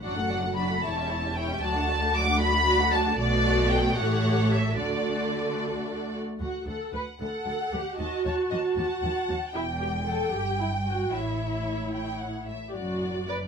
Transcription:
0.03 double bass section F#1, cello section F#2, viola section F#3 D4, violin section F#4 D5 F#5
0.17 viola section A3 F#4, violin section A4 F#5
0.31 viola section F#3 D4, violin section F#4 D5
0.43 viola section A3 F#4, violin section A4 F#5
0.57 viola section F#3 D4, violin section F#4 D5 B5
0.70 viola section A3 F#4, violin section A4 F#5
0.82 double bass section E1, cello section E2, viola section E4, violin section E4 C#5 A5
0.97 viola section C#4, violin section G4 E5
1.09 viola section E4, violin section E4 C#5
1.23 viola section C#4, violin section G4 E5
1.35 viola section E4, violin section E4 C#5 G5
1.49 viola section C#4, violin section G4 E5
1.62 cello section D2, double bass section D2, viola section F#3 F#4, violin section F#4 D5 A5
1.75 viola section A3 D4, violin section A4 F#5
1.87 viola section F#3 F#4, violin section F#4 D5
2.01 viola section A3 D4, violin section A4 F#5
2.13 viola section F#3 F#4, violin section F#4 D5 D6
2.26 viola section A3 D4, violin section A4 F#5
2.39 viola section F#3 F#4, violin section F#4 D5 B5
2.52 viola section A3 D4, violin section A4 F#5
2.64 viola section F#3 F#4, violin section F#4 D5
2.78 viola section A3 D4, violin section A4 F#5
2.90 viola section F#3 F#4, violin section D5 A5
2.94 violin section F#4
3.05 viola section A3 D4, violin section A4 F#5
3.18 double bass section B1, cello section B2, viola section A3 F#4, violin section A4 D5
3.70 violin section G5
3.96 double bass section A1, cello section A2, viola section A3 G4, violin section A4 C#5 F#5
4.51 violin section E5
4.77 double bass section D2, cello section D3, viola section A3 F#4, violin section A4 D5
6.39 double bass section D2, cello section D2, viola section F#4, violin section F#5
6.66 double bass section D2, cello section D2, viola section A4, violin section F#5
6.93 cello section D2, double bass section D2, viola section B4, violin section F#5
7.20 double bass section D2, cello section D2, viola section A4, violin section F#5
7.46 cello section D2, double bass section D2, violin section F#5
7.72 double bass section D2, cello section D2, viola section G4, violin section F#5
7.98 double bass section D#2, cello section D#2, viola section F#4, violin section D#5 A5
8.25 double bass section D#2, cello section D#2, violin section C#5 A5
8.50 double bass section D#2, cello section D#2, violin section D#5 A5
8.76 double bass section D#2, cello section D#2, violin section F#5 A5
9.02 double bass section D#2, cello section D#2, violin section A5
9.28 double bass section D#2, cello section D#2, violin section A5
9.54 double bass section E1, cello section E2, viola section E4, violin section G5
9.80 viola section G4
10.06 viola section A4
10.32 double bass section G1, cello section G2, viola section G4, violin section G5
10.60 viola section E4
10.87 viola section F#4
11.13 double bass section A1, cello section A2, viola section E4, violin section C#5 E5
11.94 violin section G5
12.21 violin section F#5
12.48 violin section E5
12.68 viola section G4
12.75 double bass section F#1, cello section F#2, viola section F#4, violin section D5
13.28 viola section B4, violin section D5

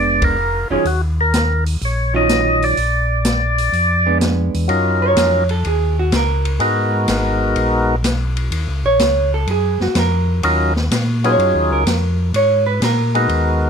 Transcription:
Already playing: tonewheel organ F1 D5, hollow-body jazz guitar G#3 B3 D4
0.22 tonewheel organ A#4, kick, ride
0.70 tonewheel organ F1 G#4, hollow-body jazz guitar D#3 F#3 C#4 F4
0.85 tonewheel organ D#2 F#4, open hi-hat
1.21 tonewheel organ A#4
1.34 snare, closed hi-hat
1.66 open hi-hat
1.81 tonewheel organ A#1 C#5, open hi-hat
2.14 hollow-body jazz guitar D#3 F#3 C#4 F4, tonewheel organ D#5
2.29 snare, closed hi-hat
2.62 tonewheel organ D5, open hi-hat
2.77 tonewheel organ A#1, open hi-hat
3.25 snare, closed hi-hat
3.58 open hi-hat
3.73 tonewheel organ F2, open hi-hat
4.06 hollow-body jazz guitar G#3 B3 D4
4.21 snare, closed hi-hat
4.54 tonewheel organ E2, open hi-hat
4.68 tonewheel organ F#2 F#3 C#4 D#4 F4 A#4, ride
5.02 hollow-body jazz guitar C#5
5.17 tonewheel organ F2, snare, hi-hat pedal, ride
5.49 hollow-body jazz guitar A4, ride
5.65 tonewheel organ D#2, hollow-body jazz guitar G#4, ride
5.99 hollow-body jazz guitar F#4
6.12 tonewheel organ C#2, hollow-body jazz guitar A#4, snare, hi-hat pedal, ride
6.45 ride
6.59 tonewheel organ G#2 G#3 B3 D#4 F#4 A#4, ride
7.08 tonewheel organ G#1, snare, hi-hat pedal, ride
7.56 tonewheel organ A#1, ride
8.03 tonewheel organ B1, snare, hi-hat pedal, ride
8.37 ride
8.51 tonewheel organ D#2, ride
8.68 tonewheel organ C#2
8.84 tonewheel organ A#1, hollow-body jazz guitar C#5
8.99 tonewheel organ C#2, snare, hi-hat pedal, ride
9.34 hollow-body jazz guitar A4
9.47 tonewheel organ F#2, hollow-body jazz guitar G#4, ride
9.80 tonewheel organ F#2, hollow-body jazz guitar F#4, snare
9.95 tonewheel organ F2, hollow-body jazz guitar A#4, snare, hi-hat pedal, ride
10.43 tonewheel organ D#2 F#3 C#4 D#4 F4 A#4, ride
10.76 snare
10.91 tonewheel organ A#2, snare, hi-hat pedal, ride
11.24 tonewheel organ F#3 C#4 D#4 F4 G#4, hollow-body jazz guitar C#5, ride
11.38 tonewheel organ F#2, ride
11.54 tonewheel organ D#2
11.70 tonewheel organ C#2, hollow-body jazz guitar A#4
11.86 tonewheel organ F2, snare, hi-hat pedal, ride
12.34 tonewheel organ G#2, hollow-body jazz guitar C#5, ride
12.66 hollow-body jazz guitar B4
12.81 tonewheel organ A#2, hollow-body jazz guitar A#4, snare, hi-hat pedal, ride
13.15 tonewheel organ G#3 B3 D#4 F#4 A#4, ride
13.29 tonewheel organ D#2, ride

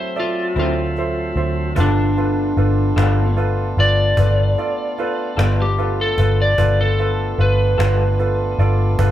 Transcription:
Already playing: tonewheel organ F#3 A3 C4 E5, electric slide guitar C5
0.16 electric slide guitar F4, grand piano A4 D5 E5, cajon slap
0.56 fingered electric bass D2, clean electric guitar D3 F#3 C4 E4, electric slide guitar F4, grand piano A4 C5 E5, cajon slap
0.96 grand piano A4 C5 E5, cajon slap
1.36 fingered electric bass D2, grand piano A4 C5 E5, cajon slap
1.76 fingered electric bass G1, clean electric guitar G3 B3 F4 A4, tonewheel organ A3 B3 D4 F4, grand piano F4 A4 B4, cajon bass
1.80 electric slide guitar D4
2.17 grand piano F4 A4 B4, cajon slap
2.57 fingered electric bass G1, grand piano F4 A4 B4, cajon slap
2.96 fingered electric bass G1, clean electric guitar G3 B3 F4 A4, grand piano F4 A4 B4, cajon slap
3.37 grand piano F4 A4 B4, cajon slap
3.77 fingered electric bass G1, grand piano F4 A4 B4, electric slide guitar D5, cajon slap
4.17 fingered electric bass G1, grand piano F4 A4 B4, cajon bass
4.58 grand piano F4 A4 D5, cajon slap
4.98 grand piano F4 A4 B4, cajon slap
5.37 fingered electric bass G1, clean electric guitar G3 B3 F4 A4, grand piano F4 A4 B4, cajon slap
5.62 electric slide guitar G4
5.78 grand piano F4 A4 B4, cajon slap
6.01 electric slide guitar A4
6.18 fingered electric bass G1, grand piano F4 A4 B4, cajon bass
6.42 electric slide guitar D5
6.58 fingered electric bass G1, tonewheel organ A3 B3 D4 F4, grand piano F4 A4 B4, cajon bass
6.81 electric slide guitar A4
6.99 grand piano F4 A4 B4, cajon slap
7.38 fingered electric bass G1, grand piano F4 A4 B4, electric slide guitar B4, cajon slap
7.78 fingered electric bass G1, clean electric guitar G3 B3 F4 A4, grand piano F4 A4 B4, cajon slap
8.19 grand piano F4 A4 B4, cajon slap
8.58 fingered electric bass G1, grand piano F4 A4 D5, cajon slap
8.99 fingered electric bass G1, grand piano F4 A4 B4, cajon bass

